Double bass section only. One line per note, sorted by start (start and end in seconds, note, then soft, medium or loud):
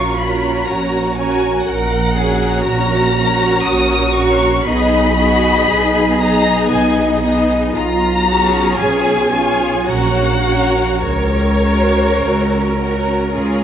0.00 0.57 A#1 medium
0.69 1.55 A#1 medium
1.66 2.54 A#1 loud
2.66 3.55 A#1 loud
3.67 4.54 A#1 medium
4.66 5.57 B1 loud
5.69 6.60 B1 loud
6.72 7.63 B1 medium
7.75 8.68 B1 loud
8.80 9.75 B1 loud
9.88 10.89 A#1 loud
11.02 12.05 C#2 loud
12.19 13.21 C#2 medium
13.34 13.64 C#2 medium